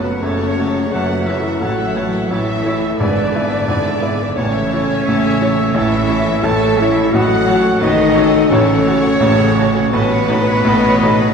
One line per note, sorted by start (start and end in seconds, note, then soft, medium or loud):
0.00 0.12 F#1 medium
0.00 0.22 F#1 medium
0.00 0.22 F#2 medium
0.00 0.18 B2 medium
0.00 0.60 A3 soft
0.00 0.21 B3 medium
0.00 0.60 F#4 soft
0.00 0.21 A4 soft
0.00 0.17 B4 medium
0.00 0.23 B4 medium
0.00 0.60 C#5 medium
0.05 0.22 F#5 soft
0.21 0.84 F#1 medium
0.21 0.56 F#1 medium
0.21 0.56 F#2 medium
0.21 0.92 C#3 medium
0.21 0.47 C#3 medium
0.21 0.48 A3 medium
0.21 0.84 C#4 medium
0.21 0.38 F#4 medium
0.21 0.59 A4 medium
0.21 0.37 C#5 soft
0.21 0.91 C#5 medium
0.21 0.90 C#5 medium
0.21 0.93 C#5 medium
0.21 0.39 A5 medium
0.38 0.56 A4 soft
0.38 0.58 F#5 soft
0.56 0.90 A3 soft
0.56 0.74 F#4 medium
0.56 0.89 F#4 soft
0.56 0.74 C#5 soft
0.56 0.94 C#5 medium
0.56 0.90 C#5 soft
0.56 0.75 A5 soft
0.74 0.91 A4 soft
0.74 0.93 F#5 medium
0.86 0.92 G#4 medium
0.86 1.07 C#5 medium
0.91 1.52 F#1 medium
0.91 1.26 F#3 medium
0.91 1.07 F#4 medium
0.91 1.60 B4 medium
0.91 1.23 F#5 medium
0.91 1.26 F#5 medium
0.91 1.29 F#5 medium
0.91 1.08 A5 medium
0.95 1.26 F#1 medium
0.95 1.27 F#2 medium
0.95 1.27 F#4 medium
1.08 1.25 A4 medium
1.08 1.27 F#5 medium
1.24 1.60 E3 medium
1.24 1.61 E4 medium
1.24 1.42 F#4 soft
1.24 1.42 C#5 medium
1.24 1.61 E5 medium
1.24 1.59 E5 medium
1.24 1.64 E5 medium
1.24 1.43 A5 medium
1.29 1.58 A3 medium
1.29 1.58 F#4 soft
1.29 1.59 C#5 medium
1.42 1.60 A4 soft
1.42 1.61 F#5 soft
1.59 2.22 A1 medium
1.59 1.95 A1 medium
1.59 1.95 A2 medium
1.59 1.85 C#3 medium
1.59 2.31 F#3 medium
1.59 1.85 A3 medium
1.59 1.76 E4 medium
1.59 2.31 F#4 medium
1.59 1.97 A4 medium
1.59 1.76 C#5 medium
1.59 2.30 F#5 medium
1.59 2.05 F#5 medium
1.59 2.07 F#5 medium
1.59 1.77 A5 medium
1.77 1.95 A4 soft
1.77 1.95 E5 soft
1.77 1.97 E5 medium
1.94 2.27 A3 soft
1.94 2.12 E4 medium
1.94 2.27 E4 soft
1.94 2.30 B4 medium
1.94 2.12 C#5 medium
1.94 2.27 C#5 medium
1.94 2.13 A5 soft
2.12 2.29 A4 medium
2.12 2.30 E5 medium
2.12 2.31 E5 medium
2.29 2.64 A1 medium
2.29 2.91 A1 medium
2.29 2.64 A2 medium
2.29 2.99 E3 medium
2.29 2.46 E4 medium
2.29 3.00 E4 medium
2.29 2.46 C#5 soft
2.29 2.65 C#5 medium
2.29 2.98 E5 medium
2.29 2.99 E5 medium
2.29 2.47 A5 medium
2.47 2.64 A4 medium
2.47 2.64 E5 soft
2.47 2.66 E5 medium
2.63 2.96 A3 soft
2.63 2.82 E4 medium
2.63 2.96 E4 medium
2.63 3.00 A4 medium
2.63 2.82 C#5 medium
2.63 2.96 C#5 medium
2.63 2.82 A5 soft
2.80 2.99 A4 medium
2.80 2.98 E5 medium
2.80 2.99 E5 soft
2.97 3.60 G#1 medium
2.97 3.33 G#1 medium
2.97 3.33 G#2 medium
2.97 4.34 D3 medium
2.97 3.24 E3 medium
2.97 3.24 B3 medium
2.97 3.14 G#4 medium
2.97 4.11 B4 medium
2.97 3.14 B4 medium
2.97 4.34 D5 medium
2.97 4.33 D5 medium
2.97 4.35 D5 medium
2.97 3.14 G#5 medium
3.01 4.16 D4 medium
3.15 3.31 G#4 medium
3.15 3.32 B4 medium
3.15 3.32 E5 medium
3.31 3.65 B3 medium
3.31 3.65 E4 soft
3.31 3.49 G#4 medium
3.31 3.49 B4 medium
3.31 3.49 G#5 medium
3.36 3.66 E5 medium
3.48 3.65 G#4 medium
3.48 3.66 B4 medium
3.48 3.67 E5 medium
3.65 4.28 G#1 medium
3.65 4.01 G#1 medium
3.65 3.83 G#4 medium
3.65 3.82 B4 medium
3.65 3.82 G#5 medium
3.69 4.02 G#2 medium
3.83 4.00 G#4 medium
3.83 4.00 B4 medium
3.83 4.01 E5 medium
4.00 4.32 B3 medium
4.00 4.33 E4 medium
4.00 4.18 G#4 medium
4.00 4.18 B4 medium
4.00 4.33 E5 medium
4.00 4.18 G#5 medium
4.19 4.36 G#4 medium
4.19 4.36 B4 medium
4.19 4.36 E5 medium
4.33 4.97 A1 medium
4.33 5.72 C#3 medium
4.33 4.38 D4 medium
4.33 5.75 C#5 medium
4.33 5.77 C#5 medium
4.33 4.73 C#5 medium
4.33 5.72 C#5 medium
4.37 4.71 A1 medium
4.37 4.71 A2 medium
4.37 4.61 E3 medium
4.37 4.61 C#4 medium
4.37 5.76 C#4 loud
4.37 4.53 E4 medium
4.37 4.53 C#5 medium
4.37 4.53 A5 medium
4.52 4.71 A4 medium
4.52 4.70 E5 medium
4.52 4.71 E5 medium
4.70 5.04 C#4 medium
4.70 4.88 E4 medium
4.70 5.04 E4 medium
4.70 5.05 A4 medium
4.70 4.88 C#5 medium
4.70 4.88 A5 medium
4.74 5.04 C#5 medium
4.88 5.06 A4 medium
4.88 5.06 E5 medium
5.06 5.67 A1 medium
5.06 5.41 A1 medium
5.06 5.41 A2 medium
5.06 5.22 E4 medium
5.06 5.22 C#5 medium
5.06 5.77 E5 medium
5.06 5.22 A5 medium
5.23 5.41 A4 medium
5.23 5.40 E5 medium
5.40 5.72 C#4 medium
5.40 5.57 E4 medium
5.40 5.72 E4 medium
5.40 5.58 C#5 medium
5.40 5.73 C#5 medium
5.40 5.58 A5 medium
5.56 5.74 A4 medium
5.56 5.74 E5 medium
5.73 6.08 A1 medium
5.73 6.36 A1 medium
5.73 6.08 A2 medium
5.73 6.44 E3 medium
5.73 5.99 E3 medium
5.73 5.99 C#4 medium
5.73 5.90 E4 medium
5.73 6.45 E4 loud
5.73 5.90 C#5 medium
5.73 6.44 C#5 medium
5.73 6.45 E5 medium
5.73 6.44 E5 medium
5.73 6.46 E5 medium
5.73 5.90 A5 medium
5.90 6.08 A4 medium
5.90 6.08 E5 medium
5.90 6.09 E5 medium
6.07 6.41 C#4 medium
6.07 6.26 E4 medium
6.07 6.41 E4 medium
6.07 6.25 C#5 medium
6.07 6.41 C#5 medium
6.07 6.25 A5 medium
6.24 6.44 A4 medium
6.24 6.43 E5 medium
6.24 6.44 E5 medium
6.41 6.78 A1 medium
6.41 7.06 A1 medium
6.41 6.78 A2 medium
6.41 6.79 A3 medium
6.41 6.60 E4 medium
6.41 6.80 A4 loud
6.41 6.60 C#5 medium
6.41 7.12 C#5 medium
6.41 6.59 A5 medium
6.41 6.79 A5 medium
6.41 6.80 A5 medium
6.58 6.79 A4 medium
6.58 6.77 E5 medium
6.58 6.79 E5 medium
6.76 7.13 E3 medium
6.76 7.11 C#4 medium
6.76 6.96 E4 medium
6.76 7.14 E4 loud
6.76 6.96 C#5 medium
6.76 7.15 E5 medium
6.76 7.14 E5 medium
6.76 6.95 A5 medium
6.81 7.11 E4 medium
6.81 7.12 C#5 medium
6.93 7.13 A4 medium
6.93 7.12 E5 medium
6.93 7.13 E5 medium
7.11 7.73 A1 medium
7.11 7.47 A1 medium
7.11 7.46 A2 medium
7.11 7.80 F#3 medium
7.11 7.37 F#3 medium
7.11 7.36 C#4 medium
7.11 7.28 F#4 medium
7.11 7.79 F#4 loud
7.11 7.28 C#5 medium
7.11 7.47 D#5 medium
7.11 7.80 F#5 medium
7.11 7.80 F#5 loud
7.11 7.81 F#5 loud
7.11 7.28 A5 medium
7.26 7.47 A4 medium
7.26 7.45 F#5 medium
7.45 7.78 C#4 medium
7.45 7.63 F#4 medium
7.45 7.63 C#5 medium
7.45 7.83 C#5 medium
7.45 7.78 C#5 medium
7.45 7.63 A5 medium
7.49 7.78 F#4 medium
7.62 7.80 A4 medium
7.62 7.80 F#5 medium
7.77 8.41 A1 medium
7.77 8.14 A1 medium
7.77 8.48 D#3 loud
7.77 7.96 F#4 medium
7.77 8.14 B4 medium
7.77 7.95 C#5 medium
7.77 8.48 D#5 medium
7.77 8.24 D#5 medium
7.77 7.95 A5 medium
7.82 8.14 A2 medium
7.82 8.51 D#4 loud
7.82 8.25 D#5 loud
7.96 8.14 A4 medium
7.96 8.14 F#5 medium
8.13 8.47 C#4 medium
8.13 8.31 F#4 medium
8.13 8.46 F#4 medium
8.13 9.24 A4 medium
8.13 8.31 C#5 medium
8.13 8.47 C#5 medium
8.13 8.32 A5 medium
8.30 8.49 A4 medium
8.30 8.50 F#5 medium
8.48 9.14 A1 medium
8.48 8.86 A2 medium
8.48 9.90 C#3 medium
8.48 8.76 F#3 medium
8.48 9.92 C#4 loud
8.48 8.76 C#4 medium
8.48 8.66 F#4 medium
8.48 8.66 C#5 medium
8.48 9.88 C#5 medium
8.48 9.92 C#5 loud
8.48 9.95 C#5 medium
8.48 8.66 A5 medium
8.52 8.86 A1 medium
8.66 8.86 A4 medium
8.66 8.85 F#5 medium
8.83 9.19 C#4 medium
8.83 9.04 F#4 medium
8.83 9.19 F#4 medium
8.83 9.04 C#5 medium
8.83 9.03 A5 medium
8.88 9.19 C#5 medium
9.01 9.21 A4 medium
9.01 9.21 F#5 medium
9.20 9.55 A1 medium
9.20 9.85 A1 medium
9.20 9.56 A2 medium
9.20 9.38 F#4 medium
9.20 9.60 G#4 medium
9.20 9.38 C#5 medium
9.20 9.38 A5 medium
9.38 9.57 A4 medium
9.38 9.56 F#5 medium
9.56 9.89 C#4 medium
9.56 9.74 F#4 medium
9.56 10.38 F#4 medium
9.56 9.90 F#4 medium
9.56 9.74 C#5 medium
9.56 9.74 A5 medium
9.60 9.90 C#5 medium
9.74 9.91 A4 medium
9.74 9.92 F#5 medium
9.90 10.55 A1 medium
9.90 10.27 A1 medium
9.90 10.27 A2 medium
9.90 11.33 B2 medium
9.90 10.18 F#3 medium
9.90 11.34 B3 loud
9.90 10.18 C#4 medium
9.90 10.09 A4 medium
9.90 11.32 B4 loud
9.90 11.33 B4 loud
9.90 11.34 B4 loud
9.90 10.08 D#5 medium
9.90 10.07 A5 medium
10.09 10.28 C#5 medium
10.09 10.28 F#5 medium
10.27 10.61 D#4 medium
10.27 10.61 F#4 medium
10.27 10.45 A4 medium
10.27 10.61 C#5 medium
10.27 10.46 D#5 medium
10.27 10.45 A5 medium
10.46 10.64 C#5 medium
10.46 10.64 F#5 medium
10.63 10.99 A1 medium
10.63 11.28 A1 medium
10.63 10.99 A2 medium
10.63 10.81 A4 medium
10.63 10.81 D#5 medium
10.63 11.34 D#5 medium
10.63 10.80 A5 medium
10.82 11.00 C#5 medium
10.82 11.00 F#5 medium
10.99 11.33 D#4 medium
10.99 11.34 F#4 medium
10.99 11.18 A4 medium
10.99 11.34 C#5 medium
10.99 11.17 D#5 medium
10.99 11.18 A5 medium
11.18 11.34 C#5 medium
11.18 11.34 F#5 medium